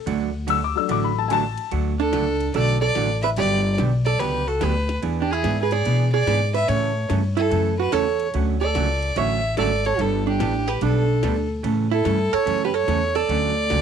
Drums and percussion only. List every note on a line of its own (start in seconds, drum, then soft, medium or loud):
0.07 ride medium
0.48 hi-hat pedal medium
0.48 ride medium
0.89 ride medium
1.30 hi-hat pedal medium
1.30 ride medium
1.58 ride medium
1.71 ride medium
2.13 snare medium
2.13 hi-hat pedal medium
2.13 ride medium
2.40 ride soft
2.54 ride medium
2.95 snare medium
2.95 hi-hat pedal medium
2.95 ride medium
3.23 ride soft
3.36 ride medium
3.78 snare medium
3.78 hi-hat pedal medium
3.78 ride medium
4.06 ride soft
4.20 ride medium
4.61 snare medium
4.61 hi-hat pedal medium
4.61 ride medium
4.89 snare medium
4.89 ride soft
5.03 ride medium
5.44 snare medium
5.44 hi-hat pedal medium
5.44 ride medium
5.71 ride soft
5.85 ride medium
6.27 snare medium
6.27 hi-hat pedal medium
6.27 ride medium
6.55 ride soft
6.69 ride medium
7.10 snare medium
7.10 hi-hat pedal medium
7.10 ride medium
7.37 ride soft
7.51 ride medium
7.92 snare medium
7.92 hi-hat pedal medium
7.92 ride medium
8.20 ride soft
8.34 ride medium
8.75 snare medium
8.75 hi-hat pedal medium
8.75 ride medium
9.02 ride soft
9.16 ride medium
9.57 snare medium
9.57 hi-hat pedal medium
9.57 ride medium
9.85 ride soft
9.99 ride medium
10.40 snare medium
10.40 hi-hat pedal medium
10.40 ride medium
10.68 snare soft
10.81 ride medium
11.23 snare medium
11.23 hi-hat pedal medium
11.23 ride medium
11.64 ride medium
12.05 snare medium
12.05 hi-hat pedal medium
12.05 ride medium
12.33 ride soft
12.47 ride medium
12.88 snare medium
12.88 hi-hat pedal medium
12.88 ride medium
13.15 ride soft
13.29 ride medium
13.70 snare medium
13.70 hi-hat pedal medium
13.70 ride medium